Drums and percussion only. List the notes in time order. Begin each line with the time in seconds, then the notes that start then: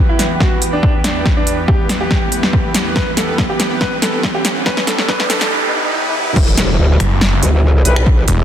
0.19 snare, closed hi-hat
0.40 kick, snare
0.62 closed hi-hat
0.83 kick
1.04 snare, closed hi-hat
1.26 kick, snare
1.47 closed hi-hat
1.68 kick
1.89 snare, closed hi-hat
2.11 kick, snare
2.32 closed hi-hat
2.43 snare
2.53 kick
2.74 snare, closed hi-hat
2.96 kick, snare
3.17 snare, closed hi-hat
3.38 kick, snare
3.60 snare, closed hi-hat
3.81 kick, snare
4.02 snare, closed hi-hat
4.23 kick, snare
4.45 snare, closed hi-hat
4.66 kick, snare
4.77 snare
4.87 snare, closed hi-hat
4.98 snare
5.08 kick, snare
5.20 snare
5.30 snare, closed hi-hat
5.41 snare, closed hi-hat
6.36 kick, crash
6.57 snare, closed hi-hat
7.00 finger snap, closed hi-hat
7.21 snare
7.43 closed hi-hat
7.85 closed hi-hat
7.96 finger snap
8.06 kick
8.28 closed hi-hat